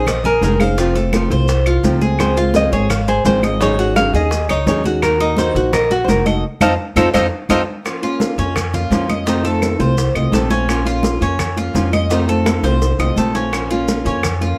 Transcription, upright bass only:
0.00 0.39 A#1 loud
0.42 1.25 F1 medium
1.30 1.80 C2 medium
1.83 2.67 C#2 medium
2.72 3.22 G#1 medium
3.25 4.08 G#1 medium
4.13 4.47 D#2 loud
4.49 4.66 C#2 medium
4.66 5.49 D#2 medium
5.55 6.05 A#1 medium
6.08 6.41 F1 medium
6.61 6.74 F2 medium
6.96 7.10 F2 loud
7.14 7.27 F2 loud
7.50 7.63 F2 medium
8.38 8.88 F2 loud
8.90 9.74 F2 medium
9.80 10.13 C2 loud
10.15 10.32 C2 medium
10.32 11.16 A#1 medium
11.21 11.71 F2 medium
11.75 12.58 F2 medium
12.63 12.96 C2 medium
12.99 13.16 C2 medium
13.17 14.00 A#1 medium
14.05 14.55 F2 loud

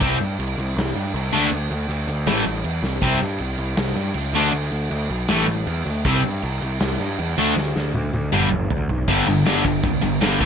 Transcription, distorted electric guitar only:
0.00 0.16 C3 medium
0.00 0.16 G3 medium
0.00 0.17 C4 loud
1.33 1.48 D3 loud
1.33 1.48 A3 medium
1.33 1.49 D4 medium
2.27 2.43 A2 medium
2.27 2.43 E3 medium
2.27 2.43 A3 medium
3.02 3.18 C3 loud
3.02 3.19 G3 medium
3.02 3.19 C4 medium
4.35 4.51 D3 loud
4.35 4.51 A3 loud
4.35 4.51 D4 loud
5.29 5.45 A2 medium
5.29 5.46 E3 medium
5.29 5.45 A3 medium
6.06 6.21 C3 medium
6.06 6.21 G3 loud
6.06 6.21 C4 loud
7.38 7.53 D3 medium
7.38 7.54 A3 medium
7.38 7.54 D4 loud
8.32 8.48 G2 medium
8.32 8.48 D3 medium
8.32 8.48 G3 loud
9.08 9.26 G2 medium
9.08 9.26 D3 medium
9.08 9.27 G3 medium
9.27 9.44 G2 medium
9.27 9.45 D3 medium
9.46 9.63 G2 medium
9.46 9.64 D3 medium
9.46 9.64 G3 medium
9.64 9.82 G2 medium
9.64 9.82 D3 medium
9.84 10.01 G2 medium
9.84 10.01 D3 medium
10.02 10.20 G2 medium
10.02 10.20 D3 medium
10.21 10.39 G2 medium
10.21 10.40 D3 medium
10.21 10.40 G3 medium
10.41 10.45 A2 medium
10.41 10.45 E3 medium
10.41 10.45 A3 loud

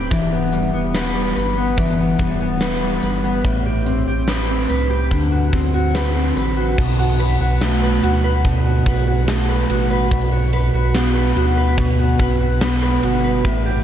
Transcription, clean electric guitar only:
0.00 0.10 A2 medium
0.00 0.19 C4 medium
0.00 0.32 G4 medium
0.00 0.94 B4 medium
0.11 1.77 E3 medium
0.32 0.73 B3 medium
0.53 1.15 G3 medium
0.74 1.57 B3 medium
0.95 1.36 B4 medium
1.15 2.19 G3 medium
1.36 2.61 B4 medium
1.57 1.99 B3 medium
1.78 3.45 E3 medium
1.99 2.40 B3 medium
2.20 2.82 G3 soft
2.41 3.24 B3 medium
2.62 3.03 B4 medium
2.82 3.53 G3 medium
3.04 3.89 B4 medium
3.24 3.66 B3 medium
3.45 5.20 A2 medium
3.66 4.06 G4 medium
3.86 4.49 C4 medium
4.08 4.89 G4 soft
4.28 4.69 B4 medium
4.49 5.20 C4 soft
4.70 5.56 B4 medium
4.90 5.19 G4 medium
5.11 7.61 D3 medium
5.32 5.74 F#4 medium
5.53 6.15 C4 medium
5.74 6.57 F#4 medium
5.95 6.36 B4 medium
6.16 6.87 C4 medium
6.37 7.19 B4 medium
6.57 6.99 F#4 medium
6.78 8.43 B2 medium
6.99 7.40 F#4 medium
7.20 7.82 B4 medium
7.41 8.03 F#4 medium
7.61 9.27 A3 medium
7.82 8.24 B4 medium
8.03 8.65 F#4 medium
8.24 8.86 B4 medium
8.45 10.10 B2 medium
8.66 9.07 F#4 medium
8.86 9.48 B4 medium
9.07 9.70 F#4 medium
9.28 10.20 A3 medium
9.49 9.90 B4 medium
9.70 10.32 F#4 medium
9.91 10.53 B4 medium
10.11 11.77 B2 medium
10.32 10.73 F#4 medium
10.53 11.14 B4 medium
10.74 11.35 F#4 medium
10.95 12.60 B3 medium
11.16 11.56 B4 medium
11.36 11.98 F#4 medium
11.57 12.19 B4 medium
11.78 13.45 B2 medium
11.99 12.40 F#4 medium
12.20 12.81 B4 medium
12.41 13.02 F#4 medium
12.62 13.53 B3 medium
12.82 13.23 B4 medium
13.04 13.53 F#4 medium
13.24 13.53 B4 medium
13.45 13.84 A2 medium
13.66 13.84 G4 medium

